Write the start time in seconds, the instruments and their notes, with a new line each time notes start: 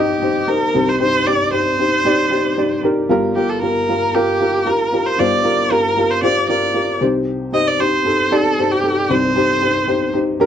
Already playing: upright piano C2 C3 D#4 G4 C5 D#5, erhu G4
0.22 upright piano D#4 G4 C5
0.48 upright piano D#4 G4 C5, erhu A#4
0.74 upright piano C2 C3 D#4 G4 C5
0.89 erhu C5
1.00 upright piano D#4 G4 C5, erhu C5
1.27 upright piano D#4 G4 D5, erhu D5
1.52 upright piano D#4 G4 C5, erhu C5
1.79 upright piano D#4 G4 C5
2.05 upright piano D#4 G4 D5
2.31 upright piano D#4 G4 C5
2.57 upright piano D#4 G4 D5
2.83 upright piano D#4 G4 A#4
3.09 upright piano G1 G2 F4 G4 A#4
3.35 upright piano F4 G4 A#4, erhu G4
3.49 erhu A4
3.62 upright piano F4 G4 A#4, erhu A#4
3.89 upright piano F4 G4 A#4
4.15 upright piano F4 G4 A#4, erhu G4
4.40 upright piano F4 G4 A#4
4.66 upright piano F4 G4 A#4, erhu A#4
4.92 upright piano F4 G4 A#4
5.06 erhu C5
5.18 upright piano G1 G2 F4 G4 C5, erhu D5
5.44 upright piano F4 G4 A#4
5.71 upright piano F4 G4 A#4, erhu A#4
5.97 upright piano F4 G4 A#4
6.11 erhu C5
6.22 upright piano F4 G4 C5, erhu D5
6.49 upright piano F4 G4 A#4, erhu D5
6.74 upright piano F4 G4 A#4
7.01 upright piano C2 C3 D#4 G4 C5
7.52 upright piano D#4 G4 C5, erhu D#5
7.68 erhu D5
7.79 upright piano D#4 G4 C5, erhu C5
8.05 upright piano D#4 G4 A4
8.31 upright piano D#4 G4 D5, erhu A4
8.58 upright piano D#4 G4 C5
8.71 erhu G4
8.83 upright piano D#4 G4 A4
9.09 upright piano C2 C3 D#4 G4 C5, erhu C5
9.35 upright piano D#4 G4 C5
9.61 upright piano D#4 G4 C5
9.87 upright piano D#4 G4 C5
10.13 upright piano D#4 G4 C5
10.40 upright piano D#4 G4 A#4